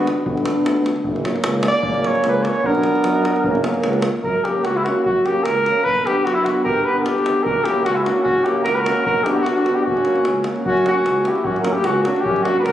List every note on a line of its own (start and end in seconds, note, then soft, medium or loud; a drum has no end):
0.00 0.21 B3 medium
0.00 0.22 D4 medium
0.07 davul high medium
0.26 0.48 G1 medium
0.26 0.89 B3 medium
0.26 0.90 D4 medium
0.26 davul low loud
0.37 davul high soft
0.46 davul high medium
0.66 0.88 D2 medium
0.66 davul high medium
0.76 davul high soft
0.86 davul high medium
0.96 davul high soft
1.04 1.29 F#1 medium
1.04 2.66 A#3 medium
1.04 2.68 C#4 medium
1.04 davul low medium
1.16 davul high soft
1.25 davul high medium
1.36 davul high soft
1.44 1.68 C#2 medium
1.44 davul high medium
1.63 davul high medium
1.68 2.08 D5 loud
1.75 davul high soft
1.83 davul low loud
1.87 2.09 F#1 medium
1.94 davul high soft
2.04 2.26 C#5 loud
2.04 davul high medium
2.15 davul high soft
2.24 2.48 C#2 medium
2.24 davul high medium
2.29 2.44 B4 medium
2.43 2.49 D5 medium
2.43 davul high medium
2.47 2.68 C#5 loud
2.56 davul high soft
2.64 2.87 B1 medium
2.64 3.47 B3 medium
2.64 3.47 D4 loud
2.64 3.66 A#4 medium
2.64 davul low medium
2.75 davul high soft
2.83 davul high medium
2.95 davul high soft
3.04 3.27 F#2 medium
3.04 davul high medium
3.25 davul high medium
3.36 davul high soft
3.44 3.67 F#1 medium
3.44 4.10 A#3 medium
3.44 4.10 C#4 medium
3.44 davul low medium
3.55 davul high soft
3.64 davul high medium
3.74 davul high soft
3.84 4.07 C#2 loud
3.84 davul high medium
3.93 davul high soft
4.02 davul high medium
4.16 davul high soft
4.24 4.36 F#2 medium
4.24 4.46 A#4 medium
4.24 davul low medium
4.44 4.66 A#3 soft
4.44 4.66 C#4 medium
4.44 4.65 G4 medium
4.44 davul high soft
4.64 4.87 C#2 medium
4.64 4.78 F#4 medium
4.64 davul high medium
4.77 4.85 E4 medium
4.77 davul high soft
4.84 5.06 A#3 soft
4.84 5.06 C#4 medium
4.84 5.05 F#4 medium
4.84 davul high medium
5.05 5.17 F#2 medium
5.05 5.27 F#4 medium
5.05 davul low medium
5.25 5.46 A#3 medium
5.25 5.46 C#4 medium
5.25 5.45 G4 medium
5.25 davul high soft
5.43 5.68 C#2 medium
5.43 5.85 A#4 medium
5.43 davul high medium
5.57 davul high soft
5.66 5.86 A#3 soft
5.66 5.86 C#4 medium
5.66 davul high soft
5.84 5.97 B1 medium
5.84 6.07 B4 loud
5.84 davul low medium
6.06 6.26 B3 medium
6.06 6.26 D4 medium
6.06 6.26 G4 medium
6.06 davul high soft
6.24 6.49 F#2 medium
6.24 6.35 F#4 medium
6.24 davul high medium
6.34 6.46 E4 medium
6.34 davul high soft
6.44 6.67 B3 soft
6.44 6.66 D4 medium
6.44 6.63 F#4 medium
6.44 davul high medium
6.63 6.78 G1 medium
6.63 6.85 G4 medium
6.63 6.86 A#4 medium
6.63 davul low medium
6.84 7.06 B3 medium
6.84 6.98 G4 medium
6.84 6.99 B4 medium
6.88 7.07 D4 medium
6.99 7.06 F#4 soft
6.99 7.45 G4 medium
6.99 7.04 A#4 medium
7.05 7.29 G1 medium
7.05 7.46 D4 medium
7.05 davul high medium
7.18 davul high soft
7.26 7.46 B3 soft
7.26 7.47 D4 soft
7.26 davul high medium
7.43 7.57 F#1 medium
7.43 7.66 F#4 medium
7.43 7.66 A#4 medium
7.43 davul low medium
7.64 7.85 A#3 medium
7.64 7.86 C#4 medium
7.64 7.85 E4 medium
7.64 7.84 G4 medium
7.64 davul high medium
7.84 8.08 C#2 medium
7.84 7.97 C#4 medium
7.84 7.97 F#4 medium
7.84 davul high medium
7.95 8.07 C#4 medium
7.95 8.05 E4 medium
7.95 davul high soft
8.03 8.26 A#3 medium
8.03 8.22 D4 medium
8.03 8.22 F#4 medium
8.03 davul high medium
8.08 8.27 C#4 medium
8.22 8.37 F#1 medium
8.22 8.45 C#4 medium
8.22 8.45 F#4 medium
8.22 davul low medium
8.44 8.66 A#3 medium
8.44 8.66 C#4 medium
8.44 8.61 E4 medium
8.44 8.63 G4 medium
8.44 davul high soft
8.62 8.73 F#4 medium
8.62 8.76 A#4 loud
8.62 davul high medium
8.67 8.89 C#2 medium
8.71 8.78 G4 medium
8.71 8.79 B4 medium
8.76 9.02 F#4 medium
8.76 9.05 A#4 medium
8.76 davul high soft
8.86 9.05 A#3 medium
8.86 9.06 C#4 medium
8.86 davul high medium
9.02 9.17 B1 medium
9.02 9.25 F#4 medium
9.02 9.25 A#4 medium
9.06 davul low medium
9.24 9.46 B3 medium
9.24 9.45 D4 medium
9.24 9.31 E4 medium
9.24 9.31 G4 medium
9.24 davul high medium
9.29 9.35 D4 medium
9.29 9.33 F#4 medium
9.29 9.43 G4 medium
9.34 9.46 E4 medium
9.41 9.67 G1 medium
9.41 9.54 D4 medium
9.41 9.54 F#4 medium
9.46 davul high medium
9.54 9.77 D4 medium
9.54 9.76 F#4 medium
9.54 davul high soft
9.64 9.84 B3 soft
9.64 9.85 D4 medium
9.64 davul high soft
9.75 9.87 E4 soft
9.75 9.85 G4 medium
9.83 9.97 F#1 loud
9.83 10.45 C#4 medium
9.83 10.44 F#4 medium
9.83 davul low medium
9.97 davul high soft
10.04 10.24 A#3 soft
10.04 10.25 C#4 medium
10.04 davul high medium
10.16 davul high soft
10.25 10.48 C#2 medium
10.25 davul high medium
10.44 10.64 A#3 soft
10.44 10.65 C#4 medium
10.44 davul high medium
10.56 davul high soft
10.64 10.87 F#2 medium
10.64 10.85 C#4 medium
10.64 10.84 F#4 medium
10.64 davul low medium
10.77 davul high soft
10.86 10.94 A#3 medium
10.86 10.93 C#4 medium
10.86 11.28 C#4 medium
10.86 11.29 F#4 medium
10.86 davul high medium
11.05 11.27 C#2 medium
11.05 davul high medium
11.24 11.32 A#3 soft
11.24 11.33 C#4 medium
11.24 11.47 E4 medium
11.24 11.46 G4 medium
11.24 davul high medium
11.35 davul high soft
11.44 11.67 F#2 medium
11.44 11.58 C#4 medium
11.44 11.58 F#4 medium
11.44 davul low medium
11.56 11.74 F#4 medium
11.56 davul high soft
11.60 11.72 A#3 medium
11.60 11.74 A#4 medium
11.65 11.73 C#4 medium
11.65 davul high medium
11.72 11.88 E4 medium
11.72 11.87 G4 medium
11.84 12.05 C#2 medium
11.84 12.05 C#4 medium
11.84 12.02 F#4 medium
11.84 davul high medium
12.03 12.11 A#3 medium
12.03 12.13 C#4 medium
12.03 12.26 D4 medium
12.03 12.22 F#4 medium
12.03 davul high medium
12.16 davul high soft
12.21 12.45 F#2 medium
12.21 12.47 C#4 medium
12.21 12.44 G4 medium
12.26 davul low medium
12.36 davul high soft
12.43 12.52 A#3 medium
12.43 12.62 D4 medium
12.43 12.59 F#4 medium
12.43 davul high medium
12.47 12.54 C#4 medium
12.59 12.72 C#2 medium
12.59 12.68 G4 medium
12.59 12.72 A#4 medium
12.59 12.62 B4 medium
12.66 12.72 F#4 medium
12.66 davul high medium